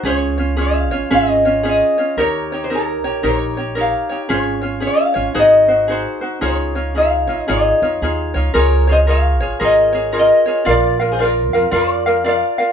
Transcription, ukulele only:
X:1
M:4/4
L:1/8
Q:"Swing" 1/4=113
K:Db
V:1 name="Ukulele"
[DFAd] [DFd] [DFAd] [DFd] [DFAd] [DFd] [DFAd] [DFd] | [E=GBd] [EGd] [EGBd] [EGd] [EGBd] [EGd] [EGBd] [EGd] | [DFAd] [DFd] [DFAd] [DFd] [EGAc] [EGc] [EGAc] [EGc] | [EFAd] [EFd] [EFAd] [EFd] [EFAd] [EFd] [EFAd] [EFd] |
[FABd] [FAd] [FABd] [FAd] [FABd] [FAd] [FABd] [FAd] | [FB=df] [FBf] [FBdf] [FBf] [FBdf] [FBf] [FBdf] [FBf] |]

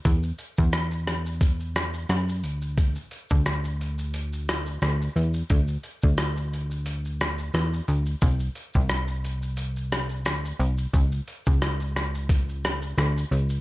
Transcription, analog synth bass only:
X:1
M:4/4
L:1/16
Q:"Swing 16ths" 1/4=88
K:Dlyd
V:1 name="Analog synth bass" clef=bass
E,,2 z E,,8- E,, F,,2 D,,2- | D,,2 z D,,8- D,, D,,2 E,,2 | D,,2 z D,,8- D,, E,,2 D,,2 | =C,,2 z C,,8- C,, D,,2 C,,2 |
C,,2 z C,,8- C,, D,,2 C,,2 |]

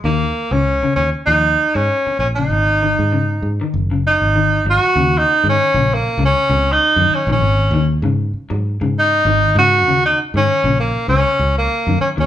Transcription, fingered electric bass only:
X:1
M:4/4
L:1/16
Q:"Swing 16ths" 1/4=98
K:Ebm
V:1 name="Fingered electric bass" clef=bass
E,,2 z D,,2 z E,, z E,,2 z A,, z2 B,,,2 | A,,,3 A,,3 A,, z G,,,3 A,,,3 A,,, z | E,,2 z A,, z B,,,2 z D,, z D,,2 z G,, z B,,, | A,,,2 E,,2 A,,2 z A,,2 A,,3 A,,,2 A,,2 |
E,,2 z A,, z B,,,2 z D,, z D,,2 z G,, z E,, |]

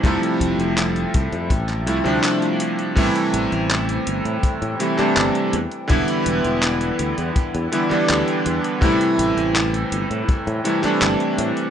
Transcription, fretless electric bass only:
X:1
M:4/4
L:1/16
Q:1/4=82
K:Am
V:1 name="Fretless electric bass" clef=bass
F,,, z F,,, F,,,2 z C,, F,, A,,,2 C,, D,, z4 | A,,, z A,,, A,,,2 z G,,, A,, z A,, z2 G,,, z E,, z | E,,, z E,,, E,,,2 z D,, E,, z E,, z2 D,, z E,, z | A,,, z A,,, A,,,2 z G,,, A,, z A,, z2 G,,, z A,, z |]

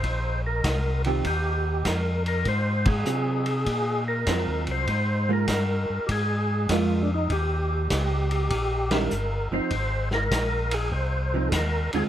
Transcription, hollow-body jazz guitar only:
X:1
M:4/4
L:1/8
Q:"Swing" 1/4=99
K:Eb
V:1 name="Hollow-body jazz guitar"
z3 [E,CFG] z4 | z2 [_G,CF] z3 [G,CF]2 | z [A,B,F] z4 [A,B,F] z | z4 z [E,G,_D_F] z [=F,CE] |
z4 z [F,CE] z [D,A,CF] |]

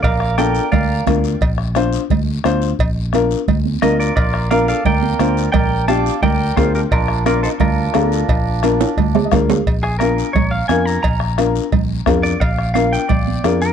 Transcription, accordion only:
X:1
M:4/4
L:1/8
Q:1/4=174
K:Bb
V:1 name="Accordion"
B2 B2 B2 z2 | z8 | z6 B F | F2 B A B4 |
B2 d2 B2 F D | D2 F E D4- | D6 z2 | z8 |
z8 | z8 |]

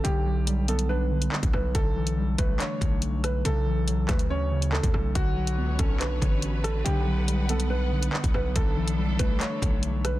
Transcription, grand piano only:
X:1
M:4/4
L:1/8
Q:1/4=141
K:Glyd
V:1 name="Grand piano"
G3 A B3 B | A3 B c3 B | A3 B c2 A2 | F3 A B3 A |
G3 A B3 B | A3 B c3 B |]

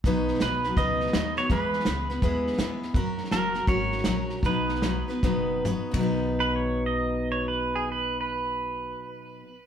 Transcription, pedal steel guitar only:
X:1
M:4/4
L:1/8
Q:"Swing" 1/4=155
K:B
V:1 name="Pedal steel guitar"
z2 B2 d3 c | B6- B z | z2 A2 c4 | B6 z2 |
z B c d2 c B G | B B6- B |]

